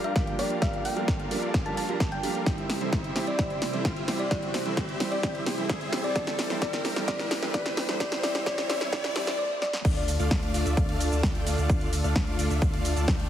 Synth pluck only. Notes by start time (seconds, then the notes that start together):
0.04 F5
0.39 D5
0.62 F5
0.85 G5
1.66 A5
1.78 A5
2.12 G5
3.27 D5
4.20 D5
5.12 D5
6.04 D5
6.16 D5
6.62 D5
7.08 D5
7.54 D5
8.00 D5
8.23 D5
8.47 D5
8.70 D5
8.93 D5
9.16 D5
9.39 D5
9.62 D5